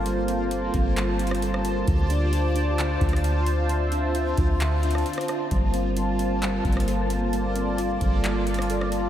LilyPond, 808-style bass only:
\new Staff \with { instrumentName = "808-style bass" } { \clef bass \time 4/4 \key g \dorian \tempo 4 = 132 g,,4. g,,2~ g,,8 | d,2~ d,8 d,4.~ | d,4. d,4. r4 | g,,2~ g,,8 g,,4.~ |
g,,4. g,,2~ g,,8 | }